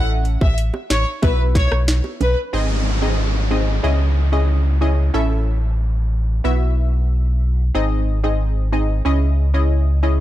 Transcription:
Already playing: sub bass A1, synth stab C#4 E4 A4 E5
0.25 closed hi-hat
0.41 sub bass A1, violin section E5, kick, high bongo
0.58 closed hi-hat
0.74 high bongo
0.90 sub bass A1, violin section C#5, snare, closed hi-hat, high bongo
1.22 sub bass B1, synth stab B3 E4 F#4 E5, violin section B4, kick, closed hi-hat, high bongo
1.55 violin section C#5, kick, snare, closed hi-hat
1.72 sub bass B1, cross-stick
1.88 snare, closed hi-hat
2.04 high bongo
2.21 sub bass B1, violin section B4, closed hi-hat, low bongo
2.53 sub bass G#1, synth stab C4 D#4 G#4 D#5, downlifter
3.02 synth stab C4 D#4 G#4 D#5
3.51 synth stab C4 D#4 G#4 D#5
3.83 sub bass C#2, synth stab C#4 E4 G#4 D#5
4.32 synth stab C#4 E4 G#4 D#5
4.81 synth stab C#4 E4 G#4 D#5
5.14 sub bass A1, synth stab C#4 E4 A4 E5
6.44 sub bass B1, synth stab B3 E4 F#4 E5
7.75 sub bass G#1, synth stab C4 D#4 G#4 D#5
8.24 synth stab C4 D#4 G#4 D#5
8.72 synth stab C4 D#4 G#4 D#5
9.05 sub bass C#2, synth stab C#4 E4 G#4 D#5
9.54 synth stab C#4 E4 G#4 D#5
10.03 synth stab C#4 E4 G#4 D#5

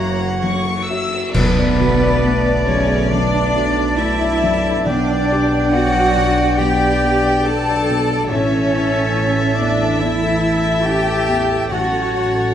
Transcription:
Already playing: felt piano F#1 F#2 F#3 F#4 E5, double bass section F#1, harp F#2 C#3 A#3 G4 A#5, cello section A#3, viola section C#5, violin section F#5 A#5
0.19 harp E4
0.41 felt piano F#1 F#2, harp A#4, violin section C#6
0.65 harp E4
0.88 felt piano F#3 F#4 E5, harp E5, violin section E6
1.12 harp A#5
1.34 felt piano B1, double bass section B1, harp B2, timpani B2, french horn section A3 B3, cello section B3, viola section B3, flute B4, violin section B4 D5, clarinet D5, oboe A5, concert bass drum, crash
1.57 harp A4, felt piano D5
1.79 harp D3, felt piano F#4
2.01 harp A4, felt piano D5
2.23 harp A3, felt piano A3
2.45 harp A4, felt piano D5
2.67 felt piano F#2, viola section C#3, cello section C#4, violin section C#5, flute C#5
2.89 harp A4, felt piano D5
3.10 felt piano F#2, harp F#3, cello section D4, viola section D4, clarinet D5, violin section D5, flute D5, oboe A5
3.32 harp A4, felt piano D5
3.54 harp D4, felt piano F#4
3.75 harp A4, felt piano D5
3.97 felt piano A3, harp D4, cello section E4, viola section E4, violin section E5, flute E5
4.19 harp A4, felt piano D5
4.42 felt piano F#2, harp D4
4.64 harp A4, felt piano D5
4.85 double bass section B1, felt piano B1, harp B2, timpani B2, french horn section B3 D4, viola section D4, cello section D4, violin section D5, flute D5, clarinet D5, oboe G5
5.07 harp G3, felt piano D5
5.29 harp D4, felt piano G4
5.53 felt piano D5
5.72 viola section F#3, felt piano B3, harp D4, cello section F#4, violin section F#5, flute F#5
5.96 felt piano D5
6.16 felt piano B2, harp D4
6.39 felt piano D5
6.58 felt piano B1, harp B2, viola section G4, cello section G4, clarinet D5, flute G5, violin section G5, oboe G5
6.81 felt piano G4
7.02 harp B3, felt piano B3
7.25 felt piano D5
7.45 felt piano B3, harp D4, viola section A4, cello section A4, violin section A5, flute A5
7.68 harp G4, felt piano D5
7.89 felt piano B2, harp D4
8.10 harp G4, felt piano D5
8.29 double bass section A1, felt piano A1, harp A2, french horn section E3 E4, viola section C#4, cello section C#4, violin section C#5 E5, flute C#5, clarinet E5, oboe A5
8.52 harp A4, felt piano A4
8.74 harp E4, felt piano E4
8.94 harp A4, felt piano A4
9.14 felt piano C#4, harp E4
9.36 harp A4, felt piano A4
9.56 felt piano E2, viola section D4, cello section D4, harp E4, violin section D5, flute D5
9.79 harp A4, felt piano A4
9.99 felt piano E2, harp E3, viola section E4, cello section E4, violin section E5, flute E5, clarinet E5, oboe A5
10.21 harp A4, felt piano A4
10.45 felt piano E4
10.64 harp A4, felt piano A4
10.84 felt piano C#4, harp E4, cello section G4, viola section G4, violin section G5, flute G5
11.07 felt piano A4
11.28 felt piano E2
11.50 felt piano A4
11.70 felt piano A1, double bass section A1, harp A2, french horn section F#3 C#4, cello section F#4, viola section F#4, clarinet C#5, violin section C#5 F#5, flute F#5, oboe A5
11.92 felt piano A4
12.13 harp F#4, felt piano F#4
12.35 felt piano A4, harp A4

